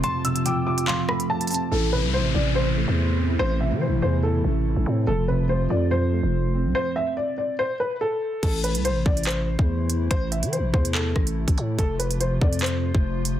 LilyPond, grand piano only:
\new Staff \with { instrumentName = "Grand piano" } { \clef bass \time 4/4 \key a \minor \tempo 4 = 143 <f, a c'>8 c8 f,8 f8 f,8 a4 c'8 | a,8 c8 a,8 e8 a,8 a4 c'8 | a,8 c8 a,8 e8 a,8 a4 c'8 | f,8 c8 f,8 f8 f,8 a4 c'8~ |
c'2 r2 | r1 | r1 | r1 | }